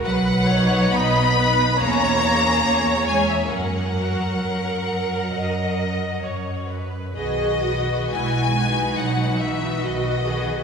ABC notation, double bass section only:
X:1
M:4/4
L:1/8
Q:1/4=68
K:B
V:1 name="Double bass section" clef=bass
B,,,2 B,,,2 E,,2 E,,2 | F,,2 F,,2 F,,2 F,,2 | B,,,2 B,,,2 B,,,2 B,,,2 |]